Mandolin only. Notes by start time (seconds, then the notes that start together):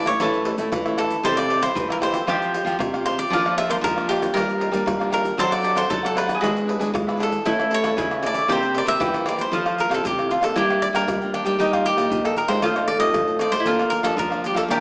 Already playing: E4
0.22 A4
1.25 A4
2.29 G4
3.33 F4
4.34 A#4
5.39 A4
5.90 A4
6.35 G#4
6.41 F#4
7.46 E4
7.99 E4
8.50 G4
9.00 G4
9.53 F4
10.56 E4
11.60 D#4
12.63 F4
13.60 E4
13.67 F4
14.71 G4